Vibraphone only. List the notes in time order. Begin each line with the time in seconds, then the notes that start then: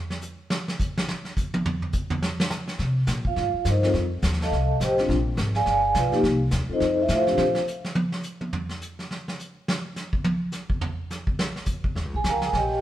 3.27 F4 F5
3.70 D#4 A#4 C5 D#5
3.83 G3 C4 F4 A4
4.42 A4 D#5 F5 A5
4.82 G4 C5 D#5 G5
4.98 G3 C4 D4 F4
5.56 G#4 D5 F5 G#5
5.97 F4 B4 D5 F5
6.11 F3 A#3 D#4 G4
6.69 G3 C4 F4 A4 C5
6.73 D#4 A4 D#5
7.02 E4 E5
7.14 F4 A4 C5 F5
7.26 G3 C4 D4 G4
12.16 G#4 G#5
12.30 A#4 F5 G5 A#5
12.45 G#4 G#5
12.56 G4 C#5 D#5 G5